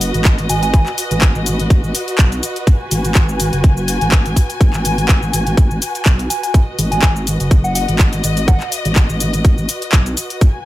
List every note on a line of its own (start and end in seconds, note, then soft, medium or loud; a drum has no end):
0.00 0.12 F#1 loud
0.00 10.65 F#4 medium
0.00 10.65 B4 medium
0.00 2.75 D#5 medium
0.00 open hi-hat loud
0.00 cabasa medium
0.14 0.48 G#1 medium
0.14 closed hi-hat medium
0.14 cabasa soft
0.25 kick loud
0.25 clap loud
0.25 closed hi-hat medium
0.25 cabasa soft
0.38 closed hi-hat soft
0.38 cabasa soft
0.49 0.85 G#1 medium
0.49 0.58 G#5 medium
0.49 open hi-hat loud
0.49 cabasa medium
0.63 0.70 G#5 medium
0.63 closed hi-hat medium
0.63 cabasa soft
0.74 1.42 G#5 medium
0.74 kick loud
0.74 closed hi-hat medium
0.74 cabasa soft
0.86 clap soft
0.86 cabasa soft
0.98 open hi-hat loud
0.98 cabasa medium
1.11 1.33 G#1 loud
1.11 closed hi-hat medium
1.11 cabasa soft
1.21 kick loud
1.21 clap loud
1.21 closed hi-hat medium
1.21 cabasa soft
1.35 1.69 G#1 loud
1.35 cabasa soft
1.46 open hi-hat loud
1.46 cabasa medium
1.60 closed hi-hat medium
1.60 cabasa soft
1.70 1.93 G#1 medium
1.70 kick loud
1.70 closed hi-hat medium
1.70 cabasa soft
1.84 cabasa soft
1.95 open hi-hat loud
1.95 cabasa medium
2.08 closed hi-hat soft
2.08 cabasa soft
2.18 2.41 B1 loud
2.18 kick loud
2.18 clap loud
2.18 closed hi-hat medium
2.18 cabasa soft
2.32 closed hi-hat soft
2.32 cabasa soft
2.43 open hi-hat loud
2.43 cabasa medium
2.56 closed hi-hat medium
2.56 cabasa soft
2.67 kick loud
2.67 closed hi-hat medium
2.67 cabasa soft
2.72 6.62 G#5 medium
2.91 3.14 G#1 loud
2.91 open hi-hat loud
2.91 cabasa medium
3.05 closed hi-hat soft
3.05 cabasa soft
3.15 3.51 G#1 medium
3.15 kick loud
3.15 clap loud
3.15 closed hi-hat medium
3.15 cabasa soft
3.29 cabasa soft
3.40 open hi-hat loud
3.40 cabasa medium
3.53 3.99 F#1 loud
3.53 closed hi-hat soft
3.53 cabasa soft
3.64 kick loud
3.64 closed hi-hat medium
3.64 cabasa soft
3.77 cabasa soft
3.88 open hi-hat loud
3.88 cabasa medium
4.01 4.35 G#1 medium
4.01 closed hi-hat soft
4.01 cabasa soft
4.12 kick loud
4.12 clap loud
4.12 closed hi-hat medium
4.12 cabasa soft
4.26 closed hi-hat soft
4.26 cabasa soft
4.36 kick medium
4.36 open hi-hat loud
4.36 cabasa medium
4.50 closed hi-hat medium
4.50 cabasa soft
4.61 5.07 G#1 loud
4.61 kick loud
4.61 closed hi-hat medium
4.61 cabasa soft
4.73 clap soft
4.73 cabasa soft
4.85 open hi-hat loud
4.85 cabasa medium
4.98 closed hi-hat soft
4.98 cabasa soft
5.09 5.32 G#1 loud
5.09 kick loud
5.09 clap loud
5.09 closed hi-hat medium
5.09 cabasa soft
5.22 cabasa soft
5.33 5.56 G#1 loud
5.33 open hi-hat loud
5.33 cabasa medium
5.47 closed hi-hat soft
5.47 cabasa soft
5.57 5.80 G#1 medium
5.57 kick loud
5.57 closed hi-hat medium
5.57 cabasa soft
5.71 cabasa soft
5.82 open hi-hat loud
5.82 cabasa medium
5.95 closed hi-hat soft
5.95 cabasa soft
6.06 6.28 B1 loud
6.06 kick loud
6.06 clap loud
6.06 closed hi-hat medium
6.06 cabasa soft
6.19 closed hi-hat soft
6.19 cabasa soft
6.30 6.39 G#5 medium
6.30 open hi-hat loud
6.30 cabasa medium
6.43 6.50 G#5 medium
6.43 closed hi-hat medium
6.43 cabasa soft
6.54 kick loud
6.54 closed hi-hat medium
6.54 cabasa soft
6.59 10.49 D#5 medium
6.79 7.01 G#1 loud
6.79 open hi-hat loud
6.79 cabasa medium
6.91 6.99 G#5 medium
6.91 closed hi-hat soft
6.91 cabasa soft
7.02 7.38 G#1 loud
7.02 7.11 G#5 medium
7.02 kick loud
7.02 clap loud
7.02 closed hi-hat medium
7.02 cabasa soft
7.16 cabasa soft
7.27 open hi-hat loud
7.27 cabasa medium
7.40 7.86 F#1 loud
7.40 closed hi-hat soft
7.40 cabasa soft
7.51 kick loud
7.51 closed hi-hat medium
7.51 cabasa soft
7.64 7.71 F#5 medium
7.64 cabasa soft
7.75 7.84 F#5 medium
7.75 open hi-hat loud
7.75 cabasa medium
7.88 8.22 G#1 medium
7.88 closed hi-hat medium
7.88 cabasa soft
7.99 kick loud
7.99 clap loud
7.99 closed hi-hat medium
7.99 cabasa soft
8.13 closed hi-hat soft
8.13 cabasa soft
8.24 8.59 G#1 medium
8.24 open hi-hat loud
8.24 cabasa medium
8.37 closed hi-hat medium
8.37 cabasa soft
8.48 8.85 F#5 medium
8.48 kick loud
8.48 closed hi-hat medium
8.48 cabasa soft
8.60 clap soft
8.60 cabasa soft
8.72 open hi-hat loud
8.72 cabasa medium
8.85 9.07 G#1 loud
8.85 closed hi-hat medium
8.85 cabasa soft
8.96 kick loud
8.96 clap loud
8.96 closed hi-hat medium
8.96 cabasa soft
9.09 9.43 G#1 loud
9.09 cabasa soft
9.20 open hi-hat loud
9.20 cabasa medium
9.34 closed hi-hat medium
9.34 cabasa soft
9.45 9.67 G#1 loud
9.45 kick loud
9.45 closed hi-hat medium
9.45 cabasa soft
9.58 cabasa soft
9.69 open hi-hat loud
9.69 cabasa medium
9.82 closed hi-hat medium
9.82 cabasa soft
9.92 10.15 B1 loud
9.92 kick loud
9.92 clap loud
9.92 closed hi-hat medium
9.92 cabasa soft
10.06 closed hi-hat soft
10.06 cabasa soft
10.17 open hi-hat loud
10.17 cabasa medium
10.30 closed hi-hat medium
10.30 cabasa soft
10.41 kick loud
10.41 closed hi-hat medium
10.41 cabasa soft
10.46 10.65 G#5 medium